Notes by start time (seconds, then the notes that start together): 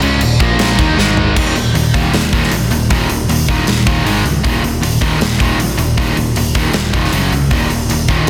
0.01 C#2 C#3 G#3 C#4, crash
0.21 D#1 D#2 A#2, crash
0.40 A#1 A#2 F3 A#3, kick, crash
0.59 snare, crash
0.77 D#2 D#3 A#3 D#4, kick, crash
0.96 G#1 G#2 D#3 G#3, snare
1.17 floor tom
1.36 D#1 D#2 A#2 D#3, kick, crash
1.55 D#1 D#2 A#2, open hi-hat
1.74 D#1 D#2 A#2, open hi-hat
1.94 D#1 D#2 A#2 D#3, kick, open hi-hat
2.13 D#1 D#2 A#2, snare, open hi-hat
2.32 D#2 A#2 D#3, kick, open hi-hat
2.44 snare
2.52 A#1 D#2 A#2, open hi-hat
2.71 D#1 D#2 A#2, open hi-hat
2.89 D#1 D#2 A#2 D#3, kick, open hi-hat
3.09 D#1 D#2 A#2, open hi-hat
3.28 D#1 D#2 A#2, open hi-hat
3.48 D#1 D#2 A#2 D#3, kick, open hi-hat
3.67 D#1 D#2 A#2, snare, open hi-hat
3.86 D#1 D#2 A#2 D#3, kick, open hi-hat
4.05 G#1 G#2 D#3 G#3, open hi-hat
4.23 C#2 G#2 D#3, open hi-hat
4.44 D#1 D#2 A#2 D#3, kick, open hi-hat
4.63 D#1 D#2 A#2, open hi-hat
4.81 D#1 D#2 A#2, open hi-hat
5.01 D#2 A#2 D#3, kick, open hi-hat
5.20 D#1 D#2 A#2, snare, open hi-hat
5.40 D#2 A#2 D#3, kick, open hi-hat
5.58 A#1 D#2 A#2, open hi-hat
5.78 D#1 D#2 A#2, open hi-hat
5.97 D#1 D#2 A#2 D#3, kick, open hi-hat
6.16 D#1 D#2 A#2, open hi-hat
6.36 D#1 D#2 A#2, open hi-hat
6.55 D#1 D#2 A#2 D#3, kick, open hi-hat
6.73 D#1 D#2 A#2, snare, open hi-hat
6.93 F1 D#2 A#2 D#3, kick, open hi-hat
7.05 snare
7.12 F#1 F#2 C#3 F#3, open hi-hat
7.32 C#2 F#2 C#3, open hi-hat
7.51 D#1 D#2 A#2 D#3, kick, open hi-hat
7.69 D#1 D#2 A#2, open hi-hat
7.89 D#1 D#2 A#2, open hi-hat
8.08 D#1 D#2 A#2 D#3, kick, open hi-hat